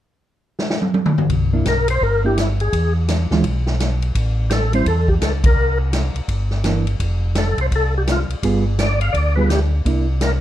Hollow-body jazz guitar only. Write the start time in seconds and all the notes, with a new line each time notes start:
1.53 A#3 D4 E4
2.24 A#3 D4 E4
3.31 E3 G#3 D4 F4
4.73 G3 C4 E4
6.65 E3 A#3 D4
8.43 G3 B3 F4 G#4
9.37 G3 B3 F4 G#4
9.86 A#3 D4 E4